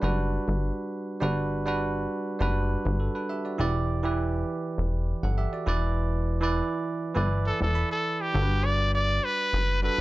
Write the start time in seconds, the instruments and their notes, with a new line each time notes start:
Already playing: tine electric piano D4 F#4 B4
0.00 analog synth bass F#1, tine electric piano G3 D4 F#4
0.04 tine electric piano B4
0.48 analog synth bass G1
1.20 analog synth bass G1, tine electric piano G3 D4 F#4 B4
1.66 tine electric piano G3 D4 F#4 B4
2.39 analog synth bass F#1, tine electric piano G3 D4 F#4 B4
2.85 analog synth bass G1
3.00 tine electric piano A4
3.15 tine electric piano D4 B4
3.29 tine electric piano G4 E5
3.45 tine electric piano F#4 D5
3.58 analog synth bass E1, tine electric piano E3 E4 G4 D5
4.03 tine electric piano E3 E4 G4 B4
4.78 analog synth bass E1
5.23 analog synth bass G1, tine electric piano A4 F#5
5.38 tine electric piano G4 E5
5.53 tine electric piano F#4 D5
5.66 analog synth bass E1, tine electric piano E3 E4 B4 D5
6.41 tine electric piano E3 E4 B4 D5
7.14 analog synth bass G1, tine electric piano E3 E4 B4 D5
7.47 trumpet A4
7.61 analog synth bass E1, trumpet A4
7.75 tine electric piano B5
7.92 trumpet A4
8.21 trumpet G4
8.33 analog synth bass G1, tine electric piano G3 D4 F#4 A4
8.42 tine electric piano B4
8.65 trumpet D5
8.95 trumpet D5
9.24 trumpet B4
9.53 analog synth bass F#1
9.82 tine electric piano G3 D4 F#4 A4, trumpet B4